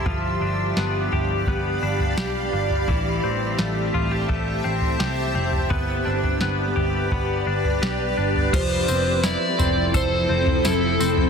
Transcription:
<<
  \new Staff \with { instrumentName = "Ambient pad" } { \time 4/4 \key g \mixolydian \tempo 4 = 85 << { <d'' f'' b''>1 | <c'' e'' a''>1 | <b' d'' b''>1 | <f e' a'>1 | } \\ { g'1~ | g'1 | g'1 | c'1 | } >> }
  \new Staff \with { instrumentName = "Electric slide guitar" } { \time 4/4 \key g \mixolydian r1 | r1 | r1 | c''4 d''4 c''4 a'4 | }
  \new Staff \with { instrumentName = "Clean electric guitar" } { \time 4/4 \key g \mixolydian f8 d'8 b8 g'8 b8 d'8 g'8 d'8 | e8 c'8 a8 f'16 g'16 a8 c'8 g'8 c'8 | b8 d'8 b8 g'8 b8 d'8 g'8 d'8 | f8 c'8 e'8 c'8 a'8 c'8 e'8 c'8 | }
  \new Staff \with { instrumentName = "Picked electric bass" } { \clef bass \time 4/4 \key g \mixolydian g,,8 g,,8 g,,8 g,,8 g,,8 g,,8 b,,8 g,,8 | a,,8 a,,8 a,,8 a,,8 a,,8 a,,8 c,8 f,,8 | g,,8 g,,8 g,,8 g,,8 g,,8 g,,8 b,,8 g,,8 | f,,8 f,,8. r16 f,,8 f,,8 f,,8 f,,8 f,,8 | }
  \new DrumStaff \with { instrumentName = "Drums" } \drummode { \time 4/4 <bd tomfh>4 sn8 tomfh8 <bd tomfh>8. tomfh16 sn8. tomfh16 | <bd tomfh>4 sn8 tomfh8 <bd tomfh>8. tomfh16 sn8. tomfh16 | <bd tomfh>8. tomfh16 sn8 tomfh8 <bd tomfh>8. tomfh16 sn8. tomfh16 | <cymc bd tamb tomfh>8 tamb8 <sn tamb>8 <tamb tomfh>8 <bd tamb tomfh>8. tomfh16 <sn tamb>8 tamb16 tomfh16 | }
>>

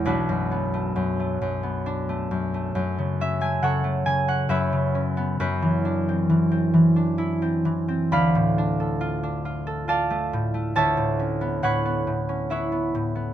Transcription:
<<
  \new Staff \with { instrumentName = "Harp" } { \time 3/4 \key a \major \tempo 4 = 68 << { b'2. | r8 e''16 gis''16 fis''8 gis''16 fis''16 e''4 | b'2. | b''2 a''4 |
a''4 fis''4 e''4 | } \\ { <d' fis'>2.~ | <d' fis'>4 <a' cis''>4 <b' cis''>4 | r2. | <d'' f''>2 <d'' f''>4 |
<cis'' e''>4 <b' cis''>4 <b' cis''>4 | } >> }
  \new Staff \with { instrumentName = "Harp" } { \time 3/4 \key a \major <b,, b>16 fis,16 b16 a16 fis,16 a16 fis,16 b16 d'16 a16 fis,16 a16 | fis,16 cis16 cis'16 a16 cis16 a16 cis16 cis'16 fis,16 cis16 cis'16 b16 | fis,16 e16 d'16 c'16 e16 c'16 e16 d'16 e'16 c'16 e16 c'16 | d,16 a,16 d'16 a'16 f'16 d'16 f'16 a'16 f'16 a16 a,16 a16 |
d,16 a,16 cis'16 b16 a,16 b16 a,16 cis'16 e'16 b16 a,16 b16 | }
>>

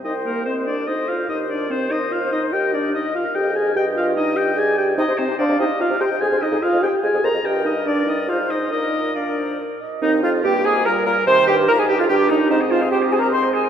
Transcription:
<<
  \new Staff \with { instrumentName = "Flute" } { \time 3/4 \key c \minor \tempo 4 = 145 c''4 c''4 c''4 | c''4 c''2 | ees''4 ees''4 ees''4 | ees''4 ees''2 |
\key ees \major g'16 c''16 ees''16 g'16 c''16 ees''16 g'16 r16 ees''16 g'16 c''16 ees''16 | aes'16 c''16 ees''16 aes'16 c''16 ees''16 aes'16 r16 ees''16 aes'16 c''16 ees''16 | ees''4 d''4 c''4 | bes'4 bes'4. r8 |
ees''8 f''8 g''8 aes''8 bes''8 bes''8 | c'''8 g''8 bes''16 aes''16 g''16 f''16 g''8 ees''8 | ees''8 f''8 \tuplet 3/2 { g''8. aes''16 bes''8 } c'''8 aes''8 | }
  \new Staff \with { instrumentName = "Oboe" } { \time 3/4 \key c \minor ees''8 bes'8 c''8 d''8 ees''8 f''8 | ees''8 d''8 c''8 ees''8 f''8 ees''8 | g''8 d''8 ees''8 f''8 g''8 aes''8 | g''8 f''8 ees''8 g''8 aes''8 g''8 |
\key ees \major ees''8 c''8 d''8 ees''8 f''8 g''8 | aes''8 ees''8 f''8 g''8 aes''8 bes''8 | g''8 ees''8 d''8 ees''8 f''8 ees''8 | ees''4 d''4 r4 |
ees'8 f'8 g'8 aes'8 bes'8 bes'8 | c''8 g'8 bes'16 aes'16 g'16 f'16 g'8 ees'8 | c''16 ees''16 c''16 ees''16 c''16 ees''16 c''16 ees''16 c''16 ees''16 c''16 ees''16 | }
  \new Staff \with { instrumentName = "Clarinet" } { \time 3/4 \key c \minor g''4 ees''4 c''4 | g'4 c''2 | bes'2. | ees''2 d''4 |
\key ees \major c''4 f''4 ees''4 | c''4 aes'4. r8 | bes'2 c''4 | d''4 f''8 c''8 d''8 ees''8 |
ees'8 f'8 g'8 aes'8 bes'8 bes'8 | c''8 g'8 bes'16 aes'16 g'16 f'16 g'8 ees'8 | ees'8 f'8 \tuplet 3/2 { g'8. aes'16 bes'8 } c''8 aes'8 | }
  \new Staff \with { instrumentName = "French horn" } { \time 3/4 \key c \minor ees'8 bes8 c'8 d'8 ees'8 f'8 | ees'8 d'8 c'8 ees'8 f'8 ees'8 | g'8 d'8 ees'8 f'8 g'8 aes'8 | g'8 f'8 ees'8 g'8 aes'8 g'8 |
\key ees \major ees'8 c'8 d'8 ees'8 f'8 g'8 | aes'8 ees'8 f'8 g'8 aes'8 bes'8 | g'8 ees'8 d'8 ees'8 f'8 ees'8 | ees'4 d'4 r4 |
c'4 bes4 g4 | ees4 ees'4 d'4 | c'2. | }
  \new Staff \with { instrumentName = "Bassoon" } { \clef bass \time 3/4 \key c \minor c,2 d,4 | ees,2. | ees,2 f,4 | g,2. |
\key ees \major c16 c16 c16 c16 c16 c16 c16 r16 c16 c16 c16 c16 | f,16 f,16 f,16 f,16 f,16 f,16 f,16 r16 f,16 f,16 f,16 f,16 | g,2 aes,4 | bes,2~ bes,8 r8 |
ees,8 f,8 g,8 aes,8 bes,8 bes,8 | c8 g,8 bes,16 aes,16 g,16 f,16 g,8 ees,8 | aes,4 aes,4 aes,4 | }
>>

